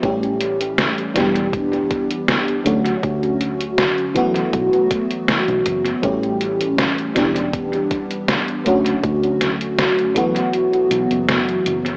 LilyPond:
<<
  \new Staff \with { instrumentName = "FM electric piano" } { \time 4/4 \key e \dorian \tempo 4 = 80 <e g a cis' g'>4. <e g b d' g'>2 <d fis a cis' fis'>8~ | <d fis a cis' fis'>4. <e fis a b fis'>2~ <e fis a b fis'>8 | <e g a cis' g'>4. <e g b d' g'>2 <d fis a cis' fis'>8~ | <d fis a cis' fis'>4. <e fis a b fis'>2~ <e fis a b fis'>8 | }
  \new Staff \with { instrumentName = "Fingered electric bass" } { \clef bass \time 4/4 \key e \dorian a,,4. e,,4.~ e,,16 r16 d,16 r16 | d,4. r8 b,,16 r4 b,,16 fis,,16 r16 | a,,4. e,,4.~ e,,16 r16 d,16 r16 | d,4. r4 b,,16 fis,,8. fis,,16 r16 | }
  \new DrumStaff \with { instrumentName = "Drums" } \drummode { \time 4/4 <hh bd>16 hh16 hh16 hh16 <hh sn>16 hh16 <hh sn>16 hh16 <hh bd>16 hh16 <hh bd>16 hh16 <hh sn>16 hh16 hh16 hh16 | <hh bd>16 hh16 hh16 hh16 <hh sn>16 hh16 <hh bd>16 hh16 <hh bd>16 hh16 <hh bd>16 hh16 <hh sn>16 hh16 <hh bd>16 hh16 | <hh bd>16 hh16 hh16 hh16 <hh sn>16 hh16 <hh sn>16 hh16 <hh bd>16 hh16 <hh bd>16 hh16 <hh sn>16 hh16 hh16 hh16 | <hh bd>16 hh16 <hh sn>16 hh16 <hh sn>16 hh16 <hh bd>16 hh16 hh16 hh16 hh16 hh16 <hh sn>16 hh16 hh16 hh16 | }
>>